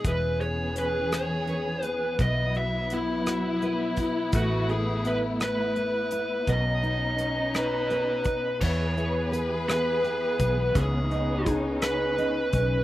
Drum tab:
CC |------|------|------|------|
HH |xxxxxx|xxxxxx|xxxxxx|xxxxxx|
SD |---r--|---r--|---r--|---r--|
BD |o-----|o----o|o-----|o----o|

CC |x-----|------|
HH |-xxxxx|xxxxxx|
SD |---r--|---r--|
BD |o----o|o-o--o|